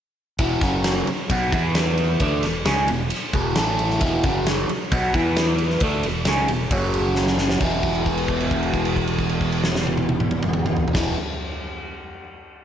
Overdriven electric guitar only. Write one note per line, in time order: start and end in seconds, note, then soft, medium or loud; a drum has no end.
0.40 0.61 E2 medium
0.40 0.62 B2 medium
0.40 0.62 E3 loud
0.62 1.07 F#2 medium
0.62 1.07 C#3 medium
0.62 1.07 F#3 medium
1.08 muted overdriven electric guitar stroke medium
1.30 1.52 B2 medium
1.30 1.53 F#3 medium
1.30 1.53 B3 medium
1.53 2.20 E3 medium
1.53 2.21 B3 loud
1.53 2.21 E4 loud
2.21 2.43 D3 loud
2.21 2.44 A3 loud
2.21 2.44 D4 loud
2.44 2.62 E2 medium
2.44 2.62 B2 medium
2.65 2.88 C#3 medium
2.65 2.88 G#3 medium
2.65 2.88 C#4 medium
2.89 3.07 E2 medium
2.89 3.07 B2 medium
3.34 3.56 E2 medium
3.34 3.56 B2 medium
3.34 3.57 E3 loud
3.57 4.01 A2 medium
3.57 4.01 E3 medium
3.57 4.02 A3 loud
4.01 4.23 E2 medium
4.01 4.24 B2 loud
4.01 4.24 E3 loud
4.25 4.69 F#2 medium
4.25 4.69 C#3 loud
4.25 4.69 F#3 medium
4.70 muted overdriven electric guitar stroke medium
4.92 5.14 B2 medium
4.92 5.14 F#3 loud
4.92 5.14 B3 loud
5.15 5.81 E3 medium
5.15 5.82 B3 loud
5.15 5.82 E4 loud
5.83 6.04 D3 medium
5.83 6.04 A3 loud
5.83 6.04 D4 loud
6.06 6.23 E2 medium
6.06 6.23 B2 medium
6.27 6.48 C#3 medium
6.27 6.49 G#3 medium
6.27 6.49 C#4 medium
6.49 6.67 E2 medium
6.49 6.67 B2 medium
6.72 7.59 F#2 loud
6.72 7.61 C#3 medium
6.72 7.61 F#3 medium
7.60 10.93 E2 medium
7.60 10.96 B2 loud
7.60 10.98 E3 medium
10.94 11.15 E2 medium
10.94 11.16 B2 loud
10.98 11.17 E3 loud